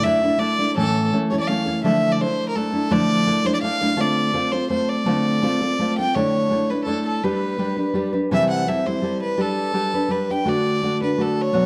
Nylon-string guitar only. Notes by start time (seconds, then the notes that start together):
0.04 A3 D4 E4 A4
0.22 A3 D4 E4 A4
0.38 A3 D4 E4 A4
0.59 A3 D4 E4 A4
0.76 A2 E3 A3 C#4 E4 A4
1.13 A3 C#4 E4 A4
1.32 A3 C#4 E4 A4
1.49 A3 C#4 E4 A4
1.66 A3 C#4 E4 A4
1.84 D3 F3 A3 D4 E4 A4
2.20 A3 D4 E4 A4
2.56 A3 D4 E4 A4
2.72 A3 D4 E4 A4
2.91 D3 F3 A3 D4 E4 A4
3.26 A3 D4 E4 A4
3.45 A3 D4 E4 A4
3.63 A3 D4 E4 A4
3.81 A3 D4 E4 A4
3.96 D3 A3 C4 F4 A4
4.33 A3 C4 F4 A4
4.52 C4 F4 A4
4.70 A3 C4 F4 A4
5.06 D3 A3 C4 F4 A4
5.42 A3 C4 F4 A4
5.61 C4 F4 A4
5.79 A3 C4 F4 A4
5.99 C4 F4 A4
6.16 D3 A3 D4 E4 A4
6.50 A3 D4 E4 A4
6.70 D4 E4 A4
6.86 A3 D4 E4 A4
7.24 G3 D4 G4 B4
7.58 G3 D4 G4 B4
7.76 D4 G4 B4
7.94 G3 D4 G4 B4
8.13 D4 G4 B4
8.31 C3 E3 G3 C4 E4 A4
8.67 G3 C4 E4 A4
8.86 G3 C4 E4 A4
9.02 G3 C4 E4 A4
9.37 G3 D4 G4 B4
9.74 G3 D4 G4 B4
9.94 D4 G4 B4
10.09 G3 D4 G4 B4
10.29 D4 G4 B4
10.45 D3 A3 D4 F#4 A4
10.82 A3 D4 F#4 A4
11.01 D4 F#4 A4
11.18 A3 D4 F#4 A4
11.53 B2 F#3 B3 D4 F#4 C#5